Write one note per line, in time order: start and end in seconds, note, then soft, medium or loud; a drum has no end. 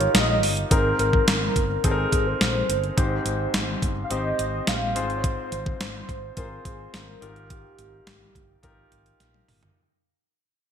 0.00 0.71 G#2 medium
0.00 0.71 D#4 medium
0.00 0.73 F4 medium
0.00 0.73 G4 medium
0.00 0.71 A#4 medium
0.00 0.11 C#5 loud
0.00 closed hi-hat soft
0.14 0.43 A#1 medium
0.14 0.54 D#5 loud
0.14 snare loud
0.14 closed hi-hat medium
0.43 0.63 G1 medium
0.43 open hi-hat medium
0.57 closed hi-hat soft
0.70 0.92 G#1 medium
0.70 1.52 G#2 medium
0.70 1.65 C4 medium
0.70 1.65 D#4 medium
0.70 1.65 G#4 medium
0.70 0.98 A#4 loud
0.70 1.65 A#4 medium
0.70 kick loud
0.70 closed hi-hat medium
0.99 1.20 G#1 medium
0.99 1.26 A#4 medium
0.99 closed hi-hat medium
1.13 kick medium
1.27 1.48 G#1 medium
1.27 1.86 A#4 loud
1.27 snare loud
1.27 closed hi-hat medium
1.56 1.76 G1 medium
1.56 kick medium
1.56 closed hi-hat medium
1.84 2.05 G#1 medium
1.84 2.78 C4 medium
1.84 2.78 D#4 medium
1.84 2.78 G#4 medium
1.84 2.28 G#4 medium
1.84 1.91 A4 medium
1.84 kick medium
1.84 closed hi-hat medium
1.91 2.82 A#4 medium
2.12 2.33 G#1 medium
2.12 kick medium
2.12 closed hi-hat medium
2.27 2.97 C5 loud
2.41 2.61 A#1 medium
2.41 snare loud
2.41 closed hi-hat medium
2.69 2.89 G1 medium
2.69 closed hi-hat medium
2.84 closed hi-hat soft
2.97 3.18 G#1 medium
2.97 3.78 G#2 medium
2.97 3.91 C4 medium
2.97 3.91 D#4 medium
2.97 3.92 G4 medium
2.97 3.79 C5 medium
2.97 3.92 C5 medium
2.97 kick loud
2.97 closed hi-hat medium
3.25 3.46 G#1 medium
3.25 closed hi-hat medium
3.54 3.74 G#1 loud
3.54 snare loud
3.54 closed hi-hat medium
3.82 4.03 G1 medium
3.82 kick medium
3.82 closed hi-hat medium
4.04 4.13 F5 medium
4.10 4.31 G#1 loud
4.10 4.93 C4 medium
4.10 4.95 D#4 medium
4.10 4.96 G4 medium
4.10 4.95 C5 medium
4.10 4.69 D#5 loud
4.10 closed hi-hat medium
4.39 4.59 G#1 loud
4.39 closed hi-hat medium
4.67 4.95 A#1 medium
4.67 5.10 F5 loud
4.67 snare loud
4.67 closed hi-hat medium
4.95 5.36 G#1 loud
4.95 5.77 G#2 medium
4.95 5.89 C4 medium
4.95 5.89 F4 medium
4.95 5.90 G#4 medium
4.95 5.90 C5 medium
4.95 closed hi-hat medium
5.10 closed hi-hat soft
5.17 5.26 C#5 medium
5.24 5.80 C5 loud
5.24 kick loud
5.24 closed hi-hat medium
5.52 5.73 G#1 loud
5.52 closed hi-hat medium
5.66 kick medium
5.80 6.01 G#1 medium
5.80 6.39 C5 loud
5.80 snare loud
5.80 closed hi-hat medium
6.09 6.29 G#1 medium
6.09 kick medium
6.09 closed hi-hat medium
6.36 6.57 G#1 loud
6.36 7.22 C4 medium
6.36 7.20 F4 medium
6.36 7.22 G#4 medium
6.36 6.68 A#4 medium
6.36 7.22 C5 medium
6.36 kick medium
6.36 closed hi-hat medium
6.65 6.86 G#1 loud
6.65 6.96 G#4 medium
6.65 kick medium
6.65 closed hi-hat medium
6.94 7.14 G#1 medium
6.94 7.50 A#4 medium
6.94 snare loud
6.94 closed hi-hat medium
7.21 7.63 G#1 loud
7.21 8.03 G#2 medium
7.21 8.16 D#4 medium
7.21 8.16 F4 medium
7.21 8.16 G4 medium
7.21 8.16 A#4 medium
7.21 closed hi-hat medium
7.36 closed hi-hat soft
7.50 9.16 G4 medium
7.50 kick loud
7.50 closed hi-hat medium
7.79 7.99 G#1 medium
7.79 closed hi-hat medium
8.07 8.27 G#1 medium
8.07 snare loud
8.07 closed hi-hat medium
8.35 8.56 G1 medium
8.35 kick medium
8.35 closed hi-hat medium
8.63 8.84 G#1 medium
8.63 9.57 D#4 medium
8.63 9.57 F4 medium
8.63 9.58 G4 medium
8.63 9.58 A#4 medium
8.63 kick medium
8.63 closed hi-hat medium
8.92 9.12 G#1 loud
8.92 closed hi-hat medium
9.06 closed hi-hat soft
9.20 9.41 A#1 medium
9.20 snare medium
9.20 closed hi-hat medium
9.34 high tom medium
9.48 9.69 G1 medium
9.48 mid tom medium
9.48 open hi-hat medium
9.63 closed hi-hat soft
9.63 floor tom medium